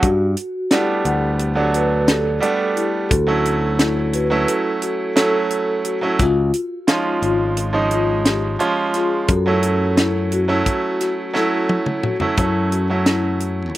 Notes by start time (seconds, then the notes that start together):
0.03 G2 F#4, kick, closed hi-hat
0.37 closed hi-hat
0.71 G3 A3 B3 D4 E4 G4, snare, closed hi-hat
1.05 D2 F#5, closed hi-hat
1.39 closed hi-hat
1.55 F#3 A3 B3 D4
1.73 F#4 B4, closed hi-hat
2.07 G4 A4, snare, closed hi-hat
2.40 G3 A3 B3 D4, closed hi-hat
2.75 E4 G4, closed hi-hat
3.09 D2 F#4 A4, kick, closed hi-hat
3.27 F#3 A3 C#4 E4
3.45 closed hi-hat
3.79 E4, snare, closed hi-hat
4.13 F#4 B4, closed hi-hat
4.30 F#3 A3 C#4 E4
4.48 A4, closed hi-hat
4.82 F#4, closed hi-hat
5.16 F#3 A3 C#4 E4 A4, snare, closed hi-hat
5.50 closed hi-hat
5.85 F#4, closed hi-hat
6.01 F#3 A3 C#4 E4
6.19 C#2 F4, kick, closed hi-hat
6.54 closed hi-hat
6.87 F3 G#3 C#4 D#4 F4, snare, closed hi-hat
7.22 G#1 F4, closed hi-hat
7.57 closed hi-hat
7.73 F3 G#3 C#4 D#4
7.91 F4, closed hi-hat
8.25 G4, snare, closed hi-hat
8.59 F3 G#3 C#4 F4, closed hi-hat
8.94 F4 G#4, snare, closed hi-hat
9.28 F#2 F#4 A4, kick, closed hi-hat
9.46 F#3 A3 C#4 E4
9.63 closed hi-hat
9.97 E4, snare, closed hi-hat
10.32 F#4, closed hi-hat
10.48 F#3 A3 C#4 E4
10.66 kick, closed hi-hat
11.01 F#4, snare, closed hi-hat
11.33 F#3 A3 C#4 E4 A4, snare
11.69 high tom
11.86 mid tom
12.03 F#4, mid tom
12.20 F#3 A3 C#4 E4, floor tom
12.37 F#2 F#3 A3 C#4 E4, kick, closed hi-hat
12.72 F#4, closed hi-hat
12.90 F#3 A3 C#4 E4
13.06 E4, snare, closed hi-hat
13.40 closed hi-hat